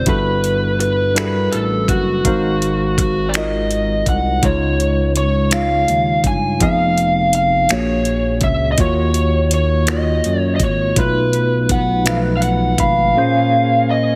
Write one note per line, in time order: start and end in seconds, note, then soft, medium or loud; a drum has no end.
0.06 1.48 G1 loud
0.06 0.90 G3 medium
0.06 0.90 D4 medium
0.06 0.90 E4 medium
0.06 0.91 F#4 medium
0.06 0.91 A4 medium
0.06 0.91 B4 medium
0.06 0.79 B4 medium
0.06 kick loud
0.06 closed hi-hat medium
0.44 closed hi-hat soft
0.80 1.16 B4 medium
0.80 closed hi-hat medium
1.15 1.99 G3 medium
1.15 1.99 D4 medium
1.15 2.00 E4 medium
1.15 2.00 F#4 medium
1.15 2.00 A4 medium
1.15 1.23 A#4 medium
1.15 1.54 B4 medium
1.15 finger snap loud
1.15 closed hi-hat medium
1.24 2.04 B4 medium
1.52 1.86 A1 medium
1.52 1.89 A4 medium
1.52 closed hi-hat soft
1.88 2.21 F#1 medium
1.88 2.98 F#4 medium
1.88 kick medium
1.88 closed hi-hat medium
2.24 4.03 G#1 medium
2.24 3.08 G#3 medium
2.24 3.08 D#4 medium
2.24 3.09 F#4 medium
2.24 3.09 A#4 medium
2.24 3.10 C5 medium
2.24 3.09 F5 medium
2.24 kick medium
2.24 closed hi-hat medium
2.62 closed hi-hat soft
2.98 3.29 F#4 medium
2.98 kick medium
2.98 closed hi-hat medium
3.29 3.35 D5 medium
3.34 4.18 G#3 medium
3.34 4.18 D#4 medium
3.34 4.18 F4 medium
3.34 4.19 F#4 medium
3.34 4.19 A#4 medium
3.34 4.09 D#5 medium
3.34 4.19 D#5 medium
3.34 finger snap loud
3.34 closed hi-hat medium
3.71 closed hi-hat soft
4.06 4.40 C2 loud
4.06 4.45 F#5 medium
4.06 kick medium
4.06 closed hi-hat medium
4.42 5.85 C#2 medium
4.42 5.26 C#3 medium
4.42 5.27 G#3 medium
4.42 5.27 D#4 medium
4.42 5.27 F4 medium
4.42 5.13 C#5 medium
4.42 5.28 C#5 medium
4.42 kick medium
4.42 closed hi-hat medium
4.80 closed hi-hat soft
5.16 5.50 C#5 medium
5.16 closed hi-hat medium
5.50 6.35 C#3 medium
5.50 6.35 G#3 medium
5.50 6.36 D#4 medium
5.50 6.36 F4 medium
5.50 6.36 C#5 medium
5.50 6.27 F5 medium
5.50 finger snap loud
5.50 closed hi-hat medium
5.88 6.22 D#2 medium
5.88 closed hi-hat soft
6.24 6.57 G1 medium
6.24 6.60 G#5 medium
6.24 kick medium
6.24 closed hi-hat medium
6.60 7.66 F1 loud
6.60 7.44 F3 medium
6.60 7.44 B3 medium
6.60 7.45 D#4 medium
6.60 7.45 G#4 medium
6.60 7.45 F5 medium
6.60 7.34 F5 medium
6.60 kick medium
6.60 closed hi-hat medium
6.98 closed hi-hat soft
7.33 7.72 F5 medium
7.33 closed hi-hat medium
7.69 8.44 A#1 medium
7.69 8.53 A#2 medium
7.69 8.54 A#3 medium
7.69 8.54 D4 medium
7.69 8.54 F#4 medium
7.69 8.55 G#4 medium
7.69 8.40 C#5 medium
7.69 8.55 C#5 medium
7.69 finger snap loud
7.69 closed hi-hat medium
8.05 closed hi-hat soft
8.41 8.75 C#2 medium
8.41 8.71 E5 medium
8.41 kick medium
8.41 closed hi-hat medium
8.72 8.79 D#5 medium
8.78 10.21 D#2 loud
8.78 9.62 D#3 medium
8.78 9.62 A#3 medium
8.78 9.63 F4 medium
8.78 9.63 F#4 medium
8.78 9.64 C#5 medium
8.78 9.53 C#5 medium
8.78 kick medium
8.78 closed hi-hat medium
9.14 closed hi-hat soft
9.51 9.90 C#5 medium
9.51 closed hi-hat medium
9.87 10.72 D#3 medium
9.87 10.72 A#3 medium
9.87 10.72 F4 medium
9.87 10.73 F#4 medium
9.87 10.73 C#5 medium
9.87 10.40 D#5 medium
9.87 finger snap loud
9.87 closed hi-hat medium
10.24 10.62 F#2 medium
10.24 closed hi-hat medium
10.40 10.55 C#5 medium
10.56 10.62 D#5 medium
10.56 kick medium
10.60 10.94 G#1 medium
10.60 closed hi-hat medium
10.64 10.97 C#5 medium
10.96 12.75 B1 loud
10.96 11.80 B2 medium
10.96 11.81 A3 medium
10.96 11.81 D#4 medium
10.96 11.81 F4 medium
10.96 11.82 B4 medium
10.96 kick loud
10.96 closed hi-hat medium
11.01 12.77 B4 medium
11.33 closed hi-hat soft
11.69 12.07 F#5 medium
11.69 kick medium
11.69 closed hi-hat medium
12.04 12.89 B2 medium
12.04 12.90 F3 medium
12.04 12.90 A3 medium
12.04 12.90 D#4 medium
12.04 12.91 B4 medium
12.04 12.15 F5 medium
12.04 finger snap loud
12.04 closed hi-hat medium
12.37 12.42 F5 medium
12.42 12.76 F#5 medium
12.42 12.79 F#5 medium
12.42 closed hi-hat medium
12.78 13.12 G#1 medium
12.78 13.92 F5 medium
12.78 13.13 B5 medium
12.78 kick medium
12.78 closed hi-hat medium
13.15 13.99 A#2 medium
13.15 13.99 A#3 medium
13.15 14.15 A#3 medium
13.15 14.00 C#4 medium
13.15 14.15 C#4 medium
13.15 14.15 G#4 medium
13.15 14.00 G#4 medium
13.15 14.01 C5 medium
13.90 14.15 D#5 medium